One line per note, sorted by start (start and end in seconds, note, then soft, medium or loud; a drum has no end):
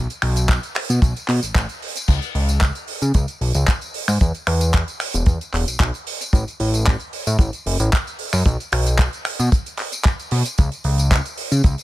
0.10 closed hi-hat soft
0.10 tambourine soft
0.22 0.59 B1 loud
0.22 finger snap medium
0.22 open hi-hat loud
0.36 closed hi-hat medium
0.36 tambourine medium
0.49 kick loud
0.49 clap loud
0.49 closed hi-hat medium
0.49 tambourine medium
0.63 closed hi-hat soft
0.63 tambourine soft
0.75 finger snap medium
0.75 clap soft
0.75 open hi-hat loud
0.89 1.00 B2 medium
0.89 closed hi-hat medium
0.89 tambourine medium
1.02 1.14 B1 medium
1.02 kick loud
1.02 closed hi-hat medium
1.02 tambourine medium
1.16 closed hi-hat soft
1.16 tambourine soft
1.28 1.40 B2 loud
1.28 clap soft
1.28 open hi-hat loud
1.43 1.53 A1 soft
1.43 closed hi-hat medium
1.43 tambourine medium
1.55 1.67 A1 loud
1.55 kick loud
1.55 clap loud
1.55 closed hi-hat medium
1.55 tambourine medium
1.69 closed hi-hat soft
1.69 tambourine soft
1.82 open hi-hat loud
1.96 closed hi-hat medium
1.96 tambourine medium
2.08 2.20 C#2 loud
2.08 kick loud
2.08 closed hi-hat medium
2.08 tambourine medium
2.08 crash medium
2.22 closed hi-hat soft
2.22 tambourine soft
2.35 2.71 C#2 loud
2.35 open hi-hat loud
2.49 closed hi-hat medium
2.49 tambourine medium
2.61 kick loud
2.61 clap loud
2.61 closed hi-hat medium
2.61 tambourine medium
2.75 closed hi-hat medium
2.75 tambourine soft
2.88 open hi-hat loud
3.01 3.12 C#3 medium
3.01 closed hi-hat medium
3.01 tambourine medium
3.14 3.26 C#2 medium
3.14 kick loud
3.14 closed hi-hat medium
3.14 tambourine medium
3.28 closed hi-hat soft
3.28 tambourine soft
3.41 3.53 B1 medium
3.41 open hi-hat loud
3.54 3.65 C#2 loud
3.54 closed hi-hat medium
3.54 tambourine medium
3.67 kick loud
3.67 clap loud
3.67 closed hi-hat medium
3.67 tambourine medium
3.81 closed hi-hat soft
3.81 tambourine soft
3.94 open hi-hat loud
4.08 4.18 G#2 loud
4.08 finger snap medium
4.08 open hi-hat medium
4.08 tambourine medium
4.21 4.32 E2 loud
4.21 kick loud
4.21 closed hi-hat medium
4.21 tambourine medium
4.34 closed hi-hat soft
4.34 tambourine soft
4.47 4.84 E2 loud
4.47 finger snap medium
4.47 open hi-hat loud
4.61 closed hi-hat medium
4.61 tambourine medium
4.73 kick loud
4.73 clap loud
4.73 closed hi-hat medium
4.73 tambourine medium
4.88 closed hi-hat soft
4.88 tambourine soft
5.00 finger snap medium
5.00 open hi-hat loud
5.14 5.25 E1 medium
5.14 closed hi-hat medium
5.14 tambourine medium
5.26 5.38 E2 medium
5.26 kick loud
5.26 closed hi-hat medium
5.26 tambourine medium
5.41 closed hi-hat soft
5.41 tambourine soft
5.53 5.65 E1 loud
5.53 clap soft
5.53 open hi-hat loud
5.67 5.77 B1 soft
5.67 closed hi-hat medium
5.67 tambourine medium
5.80 5.91 B1 loud
5.80 kick loud
5.80 clap loud
5.80 closed hi-hat medium
5.94 closed hi-hat soft
5.94 tambourine soft
6.07 open hi-hat loud
6.21 closed hi-hat medium
6.21 tambourine medium
6.33 6.44 A1 loud
6.33 kick loud
6.33 closed hi-hat medium
6.33 tambourine medium
6.48 closed hi-hat soft
6.48 tambourine soft
6.60 6.96 A1 loud
6.60 open hi-hat loud
6.74 closed hi-hat medium
6.74 tambourine medium
6.86 kick loud
6.86 clap loud
6.86 closed hi-hat medium
6.86 tambourine medium
6.99 closed hi-hat soft
6.99 tambourine soft
7.13 open hi-hat loud
7.27 7.37 A2 medium
7.27 closed hi-hat medium
7.27 tambourine medium
7.39 7.51 A1 medium
7.39 kick loud
7.39 closed hi-hat medium
7.39 tambourine soft
7.53 closed hi-hat soft
7.53 tambourine soft
7.66 7.77 F#1 medium
7.66 open hi-hat loud
7.80 7.90 A1 loud
7.80 closed hi-hat medium
7.80 tambourine medium
7.93 kick loud
7.93 clap loud
7.93 closed hi-hat medium
7.93 tambourine soft
8.07 closed hi-hat soft
8.07 tambourine soft
8.19 open hi-hat loud
8.33 8.43 F#2 medium
8.33 finger snap medium
8.33 open hi-hat medium
8.33 tambourine medium
8.45 8.57 B1 loud
8.45 kick loud
8.45 closed hi-hat medium
8.45 tambourine medium
8.60 closed hi-hat soft
8.60 tambourine soft
8.72 9.09 B1 loud
8.72 finger snap medium
8.72 open hi-hat loud
8.86 closed hi-hat medium
8.86 tambourine medium
8.99 kick loud
8.99 clap loud
8.99 closed hi-hat medium
8.99 tambourine medium
9.13 closed hi-hat soft
9.13 tambourine soft
9.25 finger snap medium
9.25 open hi-hat loud
9.39 9.50 B2 medium
9.39 closed hi-hat medium
9.39 tambourine medium
9.52 kick loud
9.52 closed hi-hat medium
9.52 tambourine medium
9.66 closed hi-hat soft
9.66 tambourine soft
9.77 clap soft
9.77 open hi-hat loud
9.92 closed hi-hat medium
9.92 tambourine medium
10.04 kick loud
10.04 clap loud
10.04 closed hi-hat medium
10.04 tambourine soft
10.19 closed hi-hat soft
10.19 tambourine soft
10.31 10.43 B2 medium
10.31 open hi-hat loud
10.45 closed hi-hat medium
10.45 tambourine medium
10.58 10.70 C#2 loud
10.58 kick loud
10.58 closed hi-hat medium
10.58 tambourine medium
10.72 closed hi-hat soft
10.72 tambourine soft
10.84 11.21 C#2 loud
10.84 open hi-hat loud
10.98 closed hi-hat medium
10.98 tambourine medium
11.11 kick loud
11.11 clap loud
11.11 closed hi-hat medium
11.11 tambourine medium
11.25 closed hi-hat soft
11.25 tambourine soft
11.37 open hi-hat loud
11.51 11.62 C#3 medium
11.51 closed hi-hat medium
11.51 tambourine medium
11.64 11.76 C#2 medium
11.64 kick loud
11.64 closed hi-hat medium
11.64 tambourine medium
11.78 closed hi-hat soft
11.78 tambourine soft